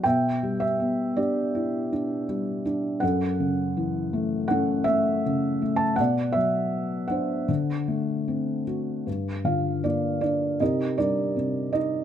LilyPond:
<<
  \new Staff \with { instrumentName = "Felt piano" } { \time 4/4 \key d \major \tempo 4 = 80 << { g''8. e''8. d''2 r8 | fis''2 fis''8 e''4~ e''16 a''16 | fis''8 e''4 fis''2 r8 | \key g \minor r8 f''8 d''8 d''8 ees''8 d''4 ees''8 | } \\ { e''4. g'2 r8 | a'2 a'2 | d''4. c''2 r8 | r8 f'8 d'8 d'8 <ees' g' bes'>8 <d' bes'>4 ees'8 | } >> }
  \new Staff \with { instrumentName = "Felt piano" } { \clef bass \time 4/4 \key d \major b,8 g8 b8 d'8 e'8 d'8 g8 d'8 | fis,8 cis8 e8 a8 cis'8 a8 cis8 a8 | b,8 fis4 d'8 d8 a8 c'8 fis'8 | \key g \minor g,8 d8 bes4 c8 g8 c4 | }
>>